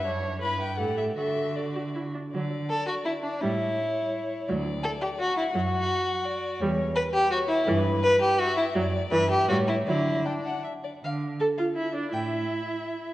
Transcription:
<<
  \new Staff \with { instrumentName = "Violin" } { \time 3/4 \key d \major \tempo 4 = 166 r4 b''8 g''8 fis''8 e''8 | e''4 d''4 r4 | d''2. | cis''2. |
d''2 fis''4~ | fis''2 d''4 | cis''4 b'4 cis''4 | b'2 e''4 |
d''4 e''4 cis''4 | d''4 g''8 fis''8 e''8 d''8 | \key d \minor r4 a''8 f''8 e''8 d''8 | e''2. | }
  \new Staff \with { instrumentName = "Violin" } { \time 3/4 \key d \major d'4 e'4 g'4 | fis'2~ fis'8 r8 | r4 a'8 fis'8 e'8 d'8 | e'2. |
r4 a'8 g'8 fis'8 e'8 | fis'2. | r4 b'8 g'8 fis'8 e'8 | r4 b'8 g'8 fis'8 e'8 |
r4 b'8 g'8 fis'8 e'8 | e'4 d'4 r4 | \key d \minor f''8 r2 r8 | g''8 r2 r8 | }
  \new Staff \with { instrumentName = "Viola" } { \time 3/4 \key d \major cis''4 b'4 a'4 | a'4 a'8 fis'8 e'8 d'8 | fis8 r2 r8 | g8 r2 r8 |
fis8 r2 r8 | fis8 r2 r8 | g8 r2 r8 | e8 r2 r8 |
fis8 r8 e8 r8 g8 r8 | fis8 r2 r8 | \key d \minor r4 a'8 f'8 e'8 d'8 | e'2. | }
  \new Staff \with { instrumentName = "Cello" } { \clef bass \time 3/4 \key d \major fis,4 g,4 a,4 | d2~ d8 r8 | d4 r2 | a,4 r2 |
d,4 r2 | fis,4 r2 | e,4 r2 | g,4 r2 |
fis,4 g,4 a,4 | d4 r2 | \key d \minor d4 r2 | a,4 r2 | }
>>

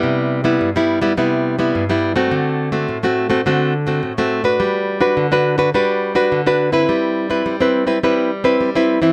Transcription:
\new Staff \with { instrumentName = "Nylon-string guitar" } { \time 4/4 \key c \lydian \tempo 4 = 105 << { <g b e'>8. <g b e'>8 <g b e'>8 <g b e'>16 <g b e'>8. <g b e'>8 <g b e'>8 <a c' fis'>16~ | <a c' fis'>8. <a c' fis'>8 <a c' fis'>8 <a c' fis'>16 <a c' fis'>8 r16 <a c' fis'>8 <a c' fis'>8 <d' fis' b'>16~ | <d' fis' b'>8. <d' fis' b'>8 <d' fis' b'>8 <d' fis' b'>16 <d' fis' b'>8. <d' fis' b'>8 <d' fis' b'>8 <c' e' b'>16~ | <c' e' b'>8. <c' e' b'>8 <c' e' b'>8 <c' e' b'>16 <c' e' b'>8 r16 <c' e' b'>8 <c' e' b'>8 <e c' e'>16 | } \\ { c4 g,4 c4 g,4 | d4 a,4 d4 a,4 | g4 d4 g4 d4 | g4 g4 g4 g4 | } >> }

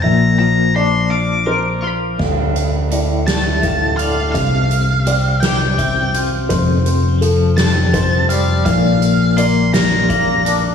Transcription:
<<
  \new Staff \with { instrumentName = "Lead electric guitar" } { \time 6/8 \key d \minor \tempo 4. = 56 bes''8 bes''8 c'''8 d'''4 r8 | r4. a''4 f''8 | f''4. g''4 r8 | r4. a''4 f''8 |
f''4 c'''8 bes''4 r8 | }
  \new Staff \with { instrumentName = "Felt piano" } { \time 6/8 \key d \minor e''4 d''4 c''4 | f''4 d''4 f''4 | f''4 d''4 e''4 | c''4 a'4 c''4 |
f''4 d''4 f''4 | }
  \new Staff \with { instrumentName = "Clean electric guitar" } { \time 6/8 \key d \minor bes,8 f8 d'8 f'8 bes'8 f'8 | d,4 a,8 a8 a,8 d8 | c4 c'8 g'8 c'8 f'8 | f,4 f8 c'8 f8 g8 |
bes,4 bes8 f'8 bes8 d'8 | }
  \new Staff \with { instrumentName = "Fingered electric bass" } { \clef bass \time 6/8 \key d \minor bes,,2. | d,2. | c,2. | f,,2. |
bes,,2. | }
  \new DrumStaff \with { instrumentName = "Drums" } \drummode { \time 6/8 r4. r4. | <cymc bd>8 hh8 hh8 <hh sn>8 <hh bd>8 hh8 | <hh bd>8 hh8 hh8 <hh sn>8 <hh bd>8 hh8 | <hh bd>8 hh8 hh8 <hh sn>8 <hh bd>8 hh8 |
<hh bd>8 hh8 hh8 <hh sn>8 <hh bd>8 hh8 | }
>>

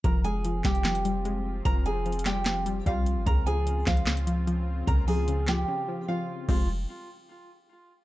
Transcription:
<<
  \new Staff \with { instrumentName = "Nylon-string guitar" } { \time 4/4 \key f \minor \tempo 4 = 149 <bes' bes''>8 <aes' aes''>4 <g' g''>2~ <g' g''>8 | <bes' bes''>8 <aes' aes''>4 <g' g''>4. <f' f''>4 | <bes' bes''>8 <aes' aes''>4 <f' f''>2~ <f' f''>8 | <bes' bes''>8 <aes' aes''>4 <g' g''>4. <f' f''>4 |
f'8 r2. r8 | }
  \new Staff \with { instrumentName = "Analog synth pad" } { \time 4/4 \key f \minor <f c' f'>1~ | <f c' f'>1 | <des c' f'>1~ | <des c' f'>1 |
r1 | }
  \new Staff \with { instrumentName = "Synth pluck" } { \clef bass \time 4/4 \key f \minor f8 aes8 f8 g8 f8 g8 aes4 | f4 f8 g8 f8 g8 g4 | des8 f8 des8 f8 des8 f8 f4 | des8 f8 des8 f8 des8 f8 f4 |
<f g aes c'>8 r2. r8 | }
  \new Staff \with { instrumentName = "808-style bass" } { \clef bass \time 4/4 \key f \minor f,,4. f,,2~ f,,8 | f,,2. c,8. aes,,16 | des,4. des,2~ des,8 | des,2 r2 |
f,,4 r2. | }
  \new DrumStaff \with { instrumentName = "Drums" } \drummode { \time 4/4 <hh bd>8 hh8 hh8 <hc hh bd sn>16 hh16 <hc hh sn>16 hh16 hh8 hh4 | <hh bd>8 hh8 \tuplet 3/2 { hh16 hh16 hh16 <hc hh sn>16 r16 r16 } <hc hh sn>8 hh8 <hh bd>8 hh8 | <hh bd>8 hh8 hh8 <hc hh bd sn>16 hh16 <hc hh sn>16 hh16 hh8 hh4 | <hh bd>8 hho8 hh8 <hc hh sn>8 r4 r4 |
<cymc bd>4 r4 r4 r4 | }
>>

